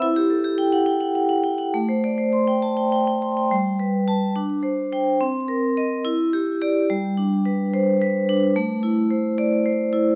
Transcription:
\new Staff \with { instrumentName = "Vibraphone" } { \time 6/8 \key g \major \tempo 4. = 71 << { r4. g''16 r4 r16 | r4. a''16 r4 r16 | r4 a''8 r4 g''8 | r4 ees''8 r4 d''8 |
r4. c''8 r4 | r4. d''8 r4 | } \\ { e'16 g'16 a'16 g'16 g''16 fis''8 fis''16 fis''16 fis''16 g''16 fis''16 | a16 c''16 d''16 c''16 c'''16 g''8 g''16 g''16 g''16 c'''16 g''16 | g8 b'8 b'8 d'8 c''8 c''8 | c'8 bes'8 bes'8 e'8 g'8 g'8 |
g8 d'8 b'8. r16 b'8 d'8 | a8 e'8 c''8. r16 c''8 e'8 | } >> }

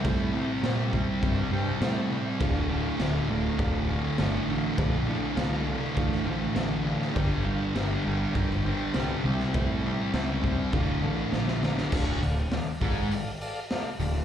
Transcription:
<<
  \new Staff \with { instrumentName = "Transistor combo organ" } { \time 4/4 \key d \minor \tempo 4 = 101 <g' c'' e''>8 <g' c'' e''>8 <g' c'' e''>8 <g' c'' e''>8 <g' c'' e''>8 <g' c'' g''>8 <g' c'' e''>8 <g' c'' e''>8 | <f' a' d''>8 <f' a' d''>8 <f' a' d''>8 <f' a' d''>8 <f' a' d''>8 <f' a' d''>8 <f' a' d''>8 <f' a' e''>8 | <f' a' d''>8 <f' a' d''>8 <f' a' f''>8 <f' a' d''>8 <f' a' d''>8 <f' a' c''>8 <f' a' d''>8 <f' a' d''>8 | <g' bes' d''>8 <g' bes' f''>8 <g' bes' d''>8 <g' bes' d''>8 <g' bes' d''>8 <g' bes' c''>8 <g' bes' c''>8 <g' c'' e''>8~ |
<g' c'' e''>8 <g' c'' e''>8 <g' c'' e''>8 <g' c'' e''>8 <a' d'' f''>8 <a' d'' f''>8 <a' d'' f''>8 <a' d'' f''>8 | <a' d'' f''>8 <a' d'' f''>8 <a' d'' f''>8 <a' d'' f''>8 <a' d'' f''>8 <a' d'' f''>8 <a' d'' f''>8 <a' d'' f''>8 | }
  \new Staff \with { instrumentName = "Distorted electric guitar" } { \clef bass \time 4/4 \key d \minor <c g c'>8 <c g c'>8 <c g c'>8 <c g c'>8 <c g c'>8 <c g c'>8 <c g c'>8 <c g c'>8 | <d, a, d>8 <d, a, d>8 <d, a, d>8 <d, a, d>8 <d, a, d>8 <d, a, d>8 <d, a, d>8 <d, a, d>8 | <d, a, d>8 <d, a, d>8 <d, a, d>8 <d, a, d>8 <d, a, d>8 <d, a, d>8 <d, a, d>8 <d, a, d>8 | <g, d g>8 <g, d g>8 <g, d g>8 <g, d g>8 <g, d g>8 <g, d g>8 <g, d g>8 <c g c'>8 |
<c g c'>8 <c g c'>8 <c g c'>8 <c g c'>8 <d, a, d>8 <d, a, d>8 <d, a, d>8 <d, a, d>8 | <d, d>8 d,8 r8 <gis, gis>8 r4. d,8 | }
  \new Staff \with { instrumentName = "Fingered electric bass" } { \clef bass \time 4/4 \key d \minor a,4 bes,4 g,8 g,8 a,4 | d,,4 d,,8 d,,8 d,,4 g,,8 a,,8 | bes,,4 c,4 a,,8 a,,8 a,,4 | g,,4 g,,8 g,,8 g,,4 c,8 c,8 |
a,4 cis,4 d,,8 a,,8 bes,,4 | d,,8 d,,8 r8 gis,,8 r4. d,,8 | }
  \new DrumStaff \with { instrumentName = "Drums" } \drummode { \time 4/4 <cymc bd>4 <cymc sn>8 bd8 <cymc bd>4 <cymc sn>4 | <cymc bd>4 <cymc sn>4 <cymc bd>4 <cymc sn>4 | <cymc bd>4 <cymc sn>4 <cymc bd>16 sn8. <cymc sn>8. sn16 | <cymc bd>4 <cymc sn>4 <cymc bd>16 sn8. <cymc sn>8. sn16 |
<cymc bd>4 <cymc sn>8 bd8 <cymc bd>4 sn16 sn16 sn16 sn16 | <cymc bd>8 hho8 <hho sn>8 <hho bd sn>8 hho8 hho8 <hho sn>8 hho8 | }
>>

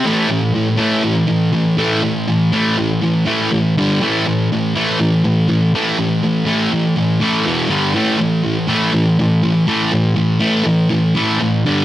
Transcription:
\new Staff \with { instrumentName = "Distorted electric guitar" } { \clef bass \time 4/4 \key g \lydian \tempo 4 = 122 <a, e a>8 <a, e>8 <a, e>8 <a, e a>8 <a, e>8 <a, e>8 <a, e>8 <a, e a>8 | <a, e>8 <a, e>8 <a, e a>8 <a, e>8 <a, e>8 <a, e a>8 <a, e>8 <g, d g>8 | <a, e a>8 <a, e>8 <a, e>8 <a, e a>8 <a, e>8 <a, e>8 <a, e>8 <a, e a>8 | <a, e>8 <a, e>8 <a, e a>8 <a, e>8 <a, e>8 <a, e a>8 <e, b, e>8 <g, d g>8 |
<a, e a>8 <a, e>8 <a, e>8 <a, e a>8 <a, e>8 <a, e>8 <a, e>8 <a, e a>8 | <a, e>8 <a, e>8 <a, e a>8 <a, e>8 <a, e>8 <a, e a>8 <a, e>8 <g, d g>8 | }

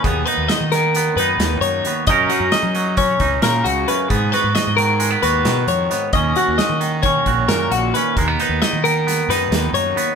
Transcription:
<<
  \new Staff \with { instrumentName = "Clean electric guitar" } { \time 9/8 \key ces \lydian \tempo 4. = 89 aes'8 b'8 dis''8 ais'4 b'4 des''4 | ees''8 ges'8 ees''4 des''4 bes'8 ges'8 ces''8 | aes'8 ces''8 ees''8 bes'4 ces''4 des''4 | ees''8 ges'8 ees''4 des''4 bes'8 ges'8 ces''8 |
ais'8 b'8 dis''8 ais'4 b'4 des''4 | }
  \new Staff \with { instrumentName = "Clean electric guitar" } { \time 9/8 \key ces \lydian << { b8 dis'4. b8 dis'4. b8 | <ges des' ees' bes'>8 ees'4. des'8 ees'4. des'8 | ces'8 ges'4. aes16 ces'16 ges'4. ces'8 | des'8 ges'4. des'8 ges'4. des'8 |
aes16 b16 dis'4. b8 dis'4. b8 | } \\ { <dis, ees>4. dis4. dis,4 dis,8 | ges,4. ges4. des4 ges,8 | aes,4. ees4. ees4 aes,8 | ees,4. ees4. bes,4 ees,8 |
dis,4. dis4. dis,4 dis,8 | } >> }
  \new Staff \with { instrumentName = "Fingered electric bass" } { \clef bass \time 9/8 \key ces \lydian dis,8 r16 dis,16 r16 dis4~ dis16 fis,8 dis,8 fis,8 r8 | ges,8 r16 ges,16 r16 ges4~ ges16 des,8 bes,8 des,8 r8 | aes,8 r16 aes,16 r16 aes,4~ aes,16 ees,8 ces8 f,8 r8 | ees,8 r16 ees,16 r16 ees4~ ees16 bes,,8 ges,8 bes,,8 r8 |
dis,8 r16 dis,16 r16 dis4~ dis16 fis,8 dis,8 fis,8 r8 | }
  \new DrumStaff \with { instrumentName = "Drums" } \drummode { \time 9/8 <hh bd>8 hh8 <hh sn>8 <hh sn>8 hh8 hh8 <hh sn>8 hh8 hh8 | <hh bd>8 hh8 <hh sn>8 hh8 <hh bd>8 <hh bd>8 <hh sn>8 hh8 hh8 | <hh bd>8 <hh sn>8 <hh sn>8 hh8 hh8 hh8 <hh sn>8 hh8 hh8 | <hh bd>8 hh8 <hh sn>8 hh8 <hh bd>8 <hh bd>8 <hh sn>8 hh8 hh8 |
<hh bd>8 hh8 <hh sn>8 hh8 <hh sn>8 <hh sn>8 <hh sn>8 hh8 hh8 | }
>>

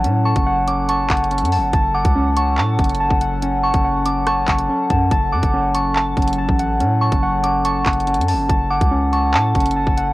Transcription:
<<
  \new Staff \with { instrumentName = "Synth bell" } { \time 4/4 \key fis \minor \tempo 4 = 142 r8 cis'''4 d'''8 cis'''4 r4 | r8 d'''4 cis'''8 a''4 r4 | r8 cis'''4 d'''8 cis'''4 r4 | r8 d'''4 cis'''8 a''4 r4 |
r8 cis'''4 d'''8 cis'''4 r4 | r8 d'''4 cis'''8 a''4 r4 | }
  \new Staff \with { instrumentName = "Synth keys" } { \time 4/4 \key fis \minor <cis' fis'' a''>8 a''8 fis''8 cis'8 a''8 fis''8 cis'8 a''8 | a''8 fis''8 cis'8 a''4 cis'8 a''8 fis''8 | cis'8 a''8 fis''8 cis'8 a''8 fis''8 cis'8 a''8 | a''8 fis''8 cis'8 a''4 cis'8 a''8 fis''8 |
cis'8 a''8 fis''8 cis'8 a''8 fis''8 cis'8 a''8 | a''8 fis''8 cis'8 a''4 cis'8 a''8 fis''8 | }
  \new Staff \with { instrumentName = "Ambient pad" } { \time 4/4 \key fis \minor << { <cis' a' fis''>1~ | <cis' a' fis''>1~ | <cis' a' fis''>1~ | <cis' a' fis''>1~ |
<cis' a' fis''>1 | <cis' a' fis''>1 | } \\ { fis1 | fis1~ | fis1~ | fis1~ |
fis1~ | fis1 | } >> }
  \new Staff \with { instrumentName = "808-style bass" } { \clef bass \time 4/4 \key fis \minor a,8. fis,,4.~ fis,,16 fis,,8. fis,16. fis,,16. | fis,,8. cis,4~ cis,16 a,8 fis,,8. fis,,8.~ | fis,,8. fis,,4.~ fis,,16 fis,,8 r8 fis,8 | fis,,8 fis,16 fis,,4.~ fis,,16 fis,,8. a,,8. |
a,8. fis,,4.~ fis,,16 fis,,8. fis,16. fis,,16. | fis,,8. cis,4~ cis,16 a,8 fis,,8. fis,,8. | }
  \new DrumStaff \with { instrumentName = "Drums" } \drummode { \time 4/4 hh8. <hh bd>16 r8 hh8 \tuplet 3/2 { hh16 r16 r16 <hc hh bd>16 hh16 hh16 hh16 hh16 hh16 hho16 r16 r16 } | <hh bd>8. <hh bd>16 r8 hh8 hc8 <hh bd>32 hh32 hh32 hh32 r16 bd16 hh8 | hh8. <hh bd>16 r8 hh8 <hh ss>8 <hc hh bd>16 hh16 r8 <hh bd>8 | <hh bd>8. <hh bd>16 r8 hh8 hc8 <hh bd>32 hh32 hh32 hh32 r16 bd16 hh8 |
hh8. <hh bd>16 r8 hh8 \tuplet 3/2 { hh16 r16 r16 <hc hh bd>16 hh16 hh16 hh16 hh16 hh16 hho16 r16 r16 } | <hh bd>8. <hh bd>16 r8 hh8 hc8 <hh bd>32 hh32 hh32 hh32 r16 bd16 hh8 | }
>>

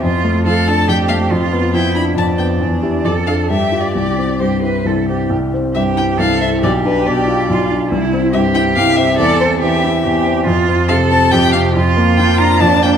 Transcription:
<<
  \new Staff \with { instrumentName = "Violin" } { \time 3/4 \key c \major \tempo 4 = 139 r4 f''8 a''8 g''8 f''8 | r4 g''8 b''8 a''8 g''8 | r4 d''8 f''8 \tuplet 3/2 { e''4 d''8 } | d''4 c''4 r4 |
r4 e''8 g''8 f''8 e''8 | d''8 b'8 d''4. r8 | r4 e''8 g''8 f''8 e''8 | d''8 c''8 e''4. r8 |
\key f \major r4 f''8 a''8 g''8 f''8 | r4 g''8 bes''8 a''8 g''8 | }
  \new Staff \with { instrumentName = "Cello" } { \time 3/4 \key c \major f'4 a'4 g'4 | f'4 e'4 d'4~ | d'4 a'4 g'4 | g'4 g'8 b'8 a'8 g'8 |
r4 g'4 a'4 | g'2 f'4 | e'4 g'2 | a'4 g'4 g'4 |
\key f \major f'4 a'4 g'4 | f'2 d'4 | }
  \new Staff \with { instrumentName = "Grand piano" } { \time 3/4 \key c \major f,8 a8 f8 d'8 f,8 a8 | f,8 b8 f8 d'8 f,8 b8 | e,8 <e' g'>8 f,8 <d' a'>8 g,8 <f' g'>8 | c,8 c'8 g,8 e'8 c,8 c'8 |
c,8 c'8 g,8 e'8 c,8 c'8 | b,,8 d'8 b,8 f'8 b,,8 d'8 | c,8 c'8 g,8 e'8 c,8 c'8 | e,8 c'8 e8 e'8 e,8 c'8 |
\key f \major f,8 c'8 c8 c'8 f,8 c8 | f,8 bes8 f8 d'8 f,8 bes8 | }
>>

